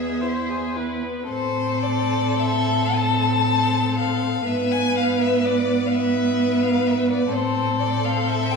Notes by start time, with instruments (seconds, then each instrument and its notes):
Already playing: cello E2, violin B3 E5, viola G#4
0.21 violin E4, viola C5
0.50 violin G#4
0.76 violin E4, viola B4
1.03 violin B3
1.29 cello A2, viola C4, violin A4 C5
1.83 violin D5
2.39 violin E5
2.96 viola C4, violin A5
3.99 violin F5
4.47 cello G#2, viola B3, violin B4 E5
4.72 violin G#5
4.98 violin F5
5.21 violin E5
5.46 violin D5
5.87 violin F5
5.91 violin B4 E5
6.63 violin F5
6.87 violin E5
7.11 violin D5
7.32 cello A2, viola C4, violin A4 C5
7.80 violin D5
8.05 violin F5
8.28 violin E5
8.51 violin G5